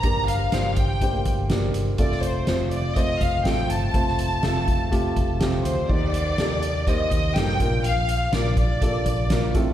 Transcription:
<<
  \new Staff \with { instrumentName = "Violin section" } { \time 4/4 \key f \mixolydian \tempo 4 = 123 bes''8 f''4 g''4 r4. | d''8 c''4 d''8 ees''8 f''8 g''8 a''8~ | a''2. r8 c''8 | d''2 ees''4 g''4 |
f''4 d''8 d''2 r8 | }
  \new Staff \with { instrumentName = "Upright piano" } { \time 4/4 \key f \mixolydian <bes d' g' bes'>4 <bes d' g' c''>4 <a bes d' g' c''>4 <bes d' g' bes'>4 | <a c' f' a'>4 <a c' f' c''>4 <a c' f' c''>4 <a c' f' a'>4 | <a c' f' c''>4 <a c' f' a'>4 <a c' f' g'>4 <a c' f' g'>4 | <bes ees' g' bes'>4 <bes ees' g' a'>4 <bes ees' g' c''>4 <bes ees' g' a'>8 <bes d' f' bes'>8~ |
<bes d' f' bes'>8. r16 <bes d' f' bes'>4 <bes d' f' a'>4 <bes d' f' bes'>8 <a c' f' a'>8 | }
  \new Staff \with { instrumentName = "Upright piano" } { \clef bass \time 4/4 \key f \mixolydian g,4. r2 r8 | r1 | r1 | ees4. r2 bes,8~ |
bes,4 r2 r8 a,8 | }
  \new Staff \with { instrumentName = "Fingered electric bass" } { \clef bass \time 4/4 \key f \mixolydian g,,4 g,,4. g,,4 g,,8 | f,,4 f,,4. f,,8 a,,8 g,,8 | f,,4 f,,4. f,,4 d,8 | ees,4 ees,4. ees,8 g,8 bes,,8 |
bes,,4 bes,,4. bes,,4 a,,8 | }
  \new DrumStaff \with { instrumentName = "Drums" } \drummode { \time 4/4 <hh bd>8 hh8 <hh sn>8 <hh bd>8 <hh bd>8 <hh bd>8 <hh sn>8 hh8 | <hh bd>16 sn16 hh8 <hh sn>8 hh8 <hh bd>8 <hh bd>8 <hh sn>8 hh8 | <hh bd>16 sn16 hh8 <hh sn>8 <hh bd>8 <hh bd>8 <hh bd>8 <hh sn>8 hh8 | <cymc bd>8 hh8 <hh sn>8 hh8 <hh bd>8 <hh bd>8 <hh sn>8 <hh bd>8 |
hh8 hh8 <hh sn>8 <hh bd>8 <hh bd>8 <hh bd>8 <hh sn>8 <hh bd>8 | }
>>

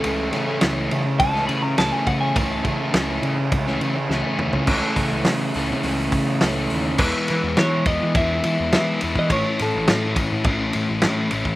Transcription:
<<
  \new Staff \with { instrumentName = "Clean electric guitar" } { \time 4/4 \key a \lydian \tempo 4 = 104 a'4 r4 a''8 b''16 ais''16 a''16 gis''16 fis''16 gis''16 | a''2. r4 | r1 | b'4 cis''8 dis''8 e''4 e''8. dis''16 |
cis''8 a'4 r2 r8 | }
  \new Staff \with { instrumentName = "Overdriven electric guitar" } { \time 4/4 \key a \lydian <cis e a cis'>8 <cis e a cis'>16 <e a cis'>16 <cis e a cis'>4~ <cis e a cis'>16 <e a cis'>16 <cis e a cis'>8 <cis e a cis'>8 <cis e a cis'>16 <e a cis'>16 | <cis e a cis'>8 <cis e a cis'>16 <e a cis'>16 <cis e a cis'>4~ <cis e a cis'>16 <e a cis'>16 <cis e a cis'>8 <cis e a cis'>8 <cis e a cis'>16 <e a cis'>16 | <cis e a cis' a'>4. <cis e a cis' a'>4. <cis e a cis' a'>4 | <e gis b e'>8 <e gis b e'>8 <e gis b e'>8 <e gis b e'>8 <e gis b e'>8 <e gis b e'>8 <e gis b e'>8 <e gis b e'>8 |
<a, e a cis' e'>8 <a, e a cis' e'>8 <a, e a cis' e'>8 <a, e a cis' e'>8 <a, e a cis' e'>8 <a, e a cis' e'>8 <a, e a cis' e'>8 <a, e a cis' e'>8 | }
  \new Staff \with { instrumentName = "Overdriven electric guitar" } { \time 4/4 \key a \lydian <cis e a cis'>8 <cis e a cis'>16 <e a cis'>16 <cis e a cis'>8 <cis e a cis'>16 <e a cis'>8 <e a cis'>8 <e a cis'>16 <cis e a cis'>16 <e a cis'>16 <cis e a cis'>16 <e a cis'>16 | <cis e a cis'>8 <cis e a cis'>16 <e a cis'>16 <cis e a cis'>8 <cis e a cis'>16 <e a cis'>8 <e a cis'>8 <e a cis'>16 <cis e a cis'>16 <e a cis'>16 <cis e a cis'>16 <e a cis'>16 | <cis e a cis'>2 <cis e a cis'>2 | r1 |
r1 | }
  \new Staff \with { instrumentName = "Picked electric bass" } { \clef bass \time 4/4 \key a \lydian cis,8 cis8 cis,8 cis8 cis,8 cis8 cis,16 r16 cis8 | cis,8 cis8 cis,8 cis8 cis,8 cis8 cis,16 r16 dis,16 cis,16 | cis,16 r16 cis16 cis,16 cis8 cis,16 cis16 cis,8 cis8 cis,8 dis,8 | e,16 r16 e16 e,16 e8 e,16 e16 e,8 e16 e,16 e8 e,16 e16 |
a,,16 r16 a,16 a,,16 a,8 a,,16 a,16 a,,8 a,16 a,,16 a,8 a,,16 a,,16 | }
  \new DrumStaff \with { instrumentName = "Drums" } \drummode { \time 4/4 cymr8 <cymr sn>8 <cymr sn>8 cymr8 <bd cymr>16 sn16 cymr8 <cymr sn>8 <bd cymr>8 | <bd cymr>8 <bd cymr>8 <cymr sn>8 cymr8 <bd cymr>16 sn16 cymr8 sn8 toml16 tomfh16 | <cymc bd>8 <hho bd>8 <hho sn>8 hho8 hho8 <hho bd>8 <hho sn>8 hho8 | <cymc bd>8 <cymr sn>8 <cymr sn>8 <bd cymr>8 <bd cymr>8 cymr8 <cymr sn>8 cymr16 bd16 |
<bd cymr>8 <cymr sn>8 <cymr sn>8 <bd cymr>8 <bd cymr>8 cymr8 <cymr sn>8 cymr16 bd16 | }
>>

